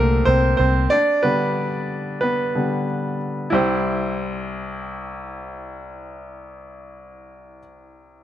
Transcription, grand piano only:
Already playing: D3 G3 A3 A#3 C4 A4 A#4 C5
0.25 C4 C5
0.57 C4 C5
0.90 D4 D5
1.23 D3 G3 B3 B4
2.21 B3 B4
2.55 D3 G3 B3
3.50 C2 E4 G4
3.54 C5

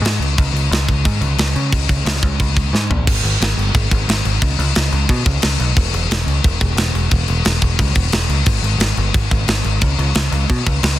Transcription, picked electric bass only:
0.02 G#2
0.19 C#2
0.38 C#2
0.52 C#2
0.71 C#2
0.89 C#2
1.05 G#2
1.21 C#2
1.38 C#2
1.56 C#3
1.73 C#2
1.89 C#2
2.05 C#2
2.22 C#2
2.40 C#2
2.73 G#2
2.90 A#1
3.07 G#1
3.23 G#1
3.40 G#1
3.57 G1
3.74 G#1
3.92 G#1
4.08 G#1
4.25 G#1
4.42 C#2
4.58 C#2
4.76 C#2
4.92 C#2
5.10 B2
5.25 C#2
5.43 C#2
5.59 B1
5.76 E1
5.93 E1
6.10 E1
6.26 C#2
6.44 E1
6.61 E1
6.77 E1
6.94 E1
7.12 E1
7.28 E1
7.45 E1
7.62 E1
7.79 C#2
7.96 E1
8.13 E1
8.29 C#2
8.46 G#1
8.62 G#1
8.78 G#1
8.97 G1
9.14 G#1
9.32 G#1
9.48 G#1
9.64 G#1
9.82 C#2
9.98 C#2
10.15 C#2
10.32 C#2
10.50 B2
10.67 C#2
10.83 C#2

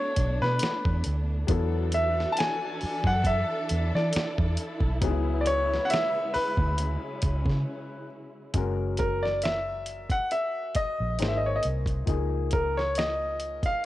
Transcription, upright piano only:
Already playing: F#3 B3 E4 A4
1.47 F#3 B3 E4 A4
5.01 F#3 B3 D#4 G#4
5.09 E4
8.54 G#3 C#4 F#4 A#4
11.19 A#3 D#4 G#4 C5
12.06 F3 A#3 D#4 G#4

